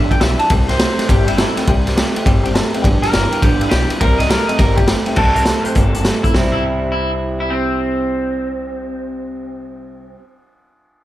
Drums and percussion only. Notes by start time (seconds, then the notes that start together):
0.11 kick, ride
0.21 snare, ride
0.39 ride
0.50 kick, ride
0.69 snare, ride
0.79 snare, ride
0.99 snare, ride
1.09 kick, ride
1.28 ride
1.38 snare, ride
1.57 snare, ride
1.67 kick, ride
1.87 snare, ride
1.97 snare, ride
2.16 ride
2.26 kick, ride
2.45 ride
2.55 snare, ride
2.74 ride
2.84 kick, ride
3.03 snare, ride
3.13 snare, ride
3.32 ride
3.42 kick, ride
3.61 ride
3.71 snare, ride
3.90 ride
4.01 kick, ride
4.20 snare, ride
4.30 snare, ride
4.49 ride
4.59 kick, snare, ride
4.77 kick, ride
4.87 snare, ride
5.06 ride
5.16 kick, crash
5.36 closed hi-hat
5.45 snare, closed hi-hat
5.65 closed hi-hat
5.75 kick, closed hi-hat
5.94 closed hi-hat
6.05 snare, closed hi-hat
6.24 kick, closed hi-hat
6.34 kick, snare